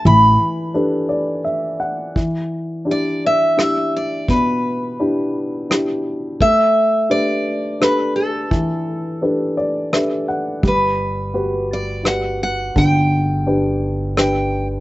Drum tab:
SD |------|----r-|----r-|----r-|
BD |------|o-----|o-----|o-----|

SD |----r-|----r-|----r-|
BD |o-----|o-----|o-----|